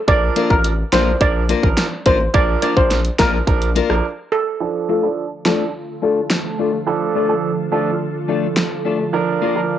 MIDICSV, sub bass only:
0, 0, Header, 1, 2, 480
1, 0, Start_track
1, 0, Key_signature, -1, "minor"
1, 0, Tempo, 566038
1, 66, Time_signature, 4, 2, 24, 8
1, 8300, End_track
2, 0, Start_track
2, 0, Title_t, "Sub bass"
2, 0, Program_c, 0, 38
2, 67, Note_on_c, 0, 34, 122
2, 254, Note_off_c, 0, 34, 0
2, 427, Note_on_c, 0, 33, 82
2, 707, Note_off_c, 0, 33, 0
2, 787, Note_on_c, 0, 34, 86
2, 974, Note_off_c, 0, 34, 0
2, 1025, Note_on_c, 0, 34, 99
2, 1306, Note_off_c, 0, 34, 0
2, 1386, Note_on_c, 0, 33, 93
2, 1480, Note_off_c, 0, 33, 0
2, 1747, Note_on_c, 0, 33, 91
2, 1934, Note_off_c, 0, 33, 0
2, 1986, Note_on_c, 0, 34, 111
2, 2173, Note_off_c, 0, 34, 0
2, 2347, Note_on_c, 0, 34, 93
2, 2627, Note_off_c, 0, 34, 0
2, 2707, Note_on_c, 0, 34, 93
2, 2894, Note_off_c, 0, 34, 0
2, 2945, Note_on_c, 0, 34, 97
2, 3226, Note_off_c, 0, 34, 0
2, 3308, Note_on_c, 0, 34, 98
2, 3401, Note_off_c, 0, 34, 0
2, 8300, End_track
0, 0, End_of_file